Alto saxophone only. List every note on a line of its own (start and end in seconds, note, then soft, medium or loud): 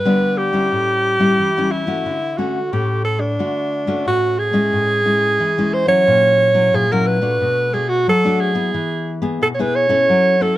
0.00 0.39 B4 loud
0.37 1.73 G4 loud
1.71 2.39 E4 medium
2.38 2.74 F#4 medium
2.73 3.04 G4 medium
3.05 3.22 A4 medium
3.20 4.05 D4 medium
4.08 4.40 F#4 medium
4.39 5.75 G#4 loud
5.74 5.88 C5 medium
5.88 6.77 C#5 loud
6.75 6.94 G#4 medium
6.92 7.08 A#4 medium
7.07 7.75 B4 loud
7.74 7.90 G#4 medium
7.89 8.07 F#4 medium
8.09 8.42 A4 loud
8.41 9.15 G#4 medium
9.43 9.48 A4 medium
9.55 9.62 C#5 medium
9.61 9.77 B4 medium
9.75 10.44 C#5 loud
10.42 10.58 A4 medium